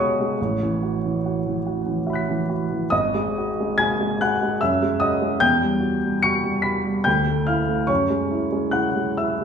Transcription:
0.00 0.34 B1 soft
0.00 0.20 G#3 soft
0.00 0.40 F#4 soft
0.00 2.47 C#5 medium
0.00 0.40 D#5 medium
0.00 0.40 F#5 medium
0.00 0.40 G#5 medium
0.00 2.50 C#6 medium
0.00 0.40 D#6 medium
0.00 0.40 F#6 medium
0.00 0.41 G#6 medium
0.20 0.40 G#3 soft
0.41 2.90 A1 medium
0.63 0.96 E3 soft
0.83 1.16 F#4 soft
1.05 1.38 E3 soft
1.26 1.58 F#4 soft
1.47 1.79 E3 soft
1.67 1.99 F#4 soft
1.86 2.20 E3 soft
2.07 2.40 F#4 soft
2.07 2.88 E5 soft
2.07 2.90 B5 soft
2.13 2.91 F#6 soft
2.13 2.92 B6 soft
2.29 2.62 E3 soft
2.50 2.84 F#4 soft
2.72 2.93 E3 soft
2.90 4.56 G#1 medium
2.90 3.74 D#5 medium
2.90 3.77 D#6 medium
3.15 3.49 G#3 soft
3.38 3.71 F#4 soft
3.60 3.92 G#3 soft
3.78 4.12 F#4 soft
3.78 4.17 G#5 medium
3.78 4.19 G#6 medium
4.01 4.33 G#3 soft
4.21 4.53 F#4 soft
4.21 4.59 F#5 medium
4.21 4.61 F#6 medium
4.43 4.62 G#3 soft
4.61 5.40 F#2 medium
4.61 4.98 E5 medium
4.61 5.01 E6 medium
4.82 5.14 G#3 soft
5.00 5.34 F#4 soft
5.00 5.39 D#5 medium
5.00 5.41 D#6 medium
5.22 5.42 G#3 soft
5.40 7.02 E2 medium
5.40 6.20 G5 medium
5.40 6.23 G6 medium
5.62 5.95 G3 soft
5.80 6.14 F#4 soft
6.04 6.36 G3 soft
6.22 6.56 F#4 soft
6.22 6.62 C#6 medium
6.22 6.64 C#7 medium
6.44 6.77 G3 soft
6.62 6.97 F#4 soft
6.62 7.02 B5 medium
6.62 7.05 B6 medium
6.85 7.06 G3 soft
7.04 7.87 D2 medium
7.04 7.44 G5 medium
7.04 7.47 G6 medium
7.27 7.60 A3 soft
7.47 7.81 E4 soft
7.47 7.87 F5 medium
7.47 7.89 F6 medium
7.69 7.90 A3 soft
7.87 9.44 F#2 soft
7.87 8.70 C#5 medium
7.87 8.74 C#6 medium
8.10 8.45 G#3 soft
8.31 8.66 E4 soft
8.52 8.88 G#3 soft
8.71 9.09 E4 soft
8.71 9.15 F#5 medium
8.71 9.18 F#6 medium
8.96 9.33 G#3 soft
9.17 9.44 E4 soft
9.17 9.44 E5 soft
9.17 9.44 E6 medium
9.41 9.44 G#3 soft

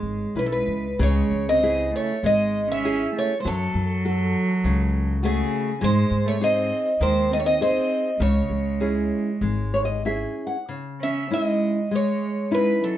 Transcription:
0.00 0.24 G#1 medium
0.00 0.32 G#3 medium
0.00 0.34 G#3 medium
0.00 0.34 C#5 medium
0.35 0.64 B1 medium
0.35 0.43 G#3 medium
0.35 0.87 C#4 soft
0.35 0.87 E4 soft
0.35 0.87 B4 soft
0.35 0.45 B4 medium
0.44 0.51 F#3 soft
0.44 0.52 A4 medium
0.52 0.97 G#3 medium
0.52 1.02 B4 medium
0.67 0.96 C#2 medium
0.99 1.20 C#2 medium
0.99 1.60 C#3 medium
0.99 1.44 G#3 medium
0.99 1.45 C#5 medium
1.31 1.91 C#2 medium
1.48 1.91 C4 medium
1.48 1.95 D#5 medium
1.63 2.12 C#3 soft
1.63 2.12 E4 soft
1.63 2.12 G#4 soft
1.94 2.22 A3 medium
1.94 2.26 C#5 medium
2.23 3.02 G#1 medium
2.23 2.83 G#3 soft
2.23 2.67 G#3 medium
2.23 2.67 D#5 loud
2.70 3.12 C#4 medium
2.70 3.17 E5 medium
2.84 3.33 C#4 soft
2.84 3.33 E4 soft
2.84 3.34 G#4 soft
3.15 3.37 A3 medium
3.15 3.40 C#5 medium
3.38 3.45 G#3 soft
3.38 3.46 C5 medium
3.45 3.65 F#2 medium
3.45 4.03 F#3 medium
3.45 5.20 F#3 loud
3.45 5.25 A4 medium
3.74 4.33 F#2 medium
4.05 4.52 F#4 soft
4.05 4.53 A4 medium
4.64 5.41 C#2 medium
4.64 5.22 C#3 medium
5.23 5.78 C#3 medium
5.23 5.71 A3 soft
5.23 5.70 F#4 soft
5.23 5.70 G#4 soft
5.23 5.85 G#4 medium
5.81 6.01 G#2 loud
5.81 6.39 G#3 medium
5.81 6.24 G#3 medium
5.81 6.27 C5 loud
6.11 6.69 G#2 medium
6.26 6.40 A3 medium
6.26 6.43 C#5 medium
6.41 6.97 C4 medium
6.41 6.89 D#4 soft
6.41 6.89 G#4 soft
6.41 6.89 C5 soft
6.41 7.02 D#5 loud
7.00 7.78 D#2 medium
7.00 7.59 D#3 medium
7.00 7.29 G#3 medium
7.00 7.33 C5 medium
7.31 7.36 C4 medium
7.31 7.39 D#5 medium
7.37 7.44 A3 medium
7.37 7.46 C#5 medium
7.44 7.59 C4 medium
7.44 7.61 D#5 medium
7.60 8.16 C4 medium
7.60 8.09 D#4 soft
7.60 8.09 G#4 soft
7.60 8.09 C5 soft
7.60 8.21 D#5 medium
8.20 8.40 C#2 medium
8.20 8.79 C#3 medium
8.20 10.02 G#3 medium
8.20 10.03 C#5 medium
8.49 9.10 C#2 medium
8.80 9.30 C#4 soft
8.80 9.30 E4 soft
8.80 9.30 G#4 soft
9.41 10.24 G#1 medium
9.41 10.04 G#3 soft
9.74 9.84 C#5 medium
9.85 10.05 D#5 medium
10.05 10.56 C#4 soft
10.05 10.56 E4 soft
10.05 10.57 G#4 soft
10.05 10.45 E5 medium
10.47 10.67 F#5 medium
10.69 11.28 C#3 medium
11.01 11.29 C#4 medium
11.01 11.30 E5 medium
11.30 11.87 G#3 medium
11.30 11.79 C#4 soft
11.30 11.79 D#4 soft
11.30 11.79 E4 medium
11.30 11.94 D#5 medium
11.91 12.49 G#3 medium
11.91 12.47 G#3 medium
11.95 12.54 C#5 medium
12.51 12.79 G#3 medium
12.51 12.98 C#4 soft
12.51 12.98 D#4 soft
12.51 12.98 E4 medium
12.51 12.84 B4 medium
12.83 12.98 F#3 medium
12.83 12.98 A4 medium

